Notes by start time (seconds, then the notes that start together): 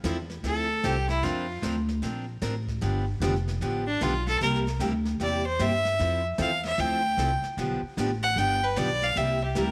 0.04 E2 F3 C4 E4 A4, snare, hi-hat pedal
0.30 snare
0.43 D2 F3 C4 E4 A4, brush sweep, snare
0.84 C2 F3 C4 E4 G4 A4, snare, hi-hat pedal
1.09 E4, snare
1.23 F2 F3 C4 D4 F4 A#4, brush sweep, snare
1.62 D2 F3 C4 D4 A#4, snare, hi-hat pedal
1.88 snare
2.02 A#1 F3 C4 D4 A#4, brush sweep, snare
2.42 A1 F3 C4 D4 A#4, snare, hi-hat pedal
2.68 kick, snare
2.81 G1 D3 F3 B3 D4 G4, brush sweep, snare
3.20 F1 D3 F3 B3 D4 G4, snare, hi-hat pedal
3.35 snare
3.48 snare
3.61 A1 D3 F3 B3 D4 G4, brush sweep, snare
3.87 D4
4.01 B1 D3 F3 B3 D4 F4 G4, snare, hi-hat pedal
4.27 A4, snare
4.40 C2 C3 G3 A#3 E4 G4 A#4, brush sweep, snare
4.54 snare
4.67 snare
4.79 D2 C3 G3 A#3 E4 G4, snare, hi-hat pedal
5.05 snare
5.20 E2 C3 G3 A#3 E4 G4 D5, brush sweep, snare
5.47 C5
5.59 G2 C3 G3 A#3 E4 G4 E5, snare, hi-hat pedal
5.85 snare
5.99 F2 F3 C4 E4 A4, brush sweep, snare
6.38 E2 F3 C4 E4 A4 F5, snare, hi-hat pedal
6.64 E5, snare
6.78 D2 F3 C4 E4 A4 G5, brush sweep, snare
7.17 C2 F3 C4 E4 A4, snare, hi-hat pedal
7.42 muted upright bass stroke, snare
7.57 B1 D3 F3 B3 D4 G4, brush sweep, snare
7.82 muted upright bass stroke
7.97 A1 D3 F3 B3 D4 G4, snare, hi-hat pedal
8.23 F#5
8.36 G1 D3 F3 B3 D4 G4 G5, brush sweep, snare
8.64 B4
8.76 B1 D3 F3 B3 D4 G4 D5, snare, hi-hat pedal
9.02 F5, snare
9.15 C2 C3 G3 A#3 E4 G4 E5, brush sweep, snare
9.44 G4
9.55 D2 C3 G3 A#3 E4 G4 A#4, snare, hi-hat pedal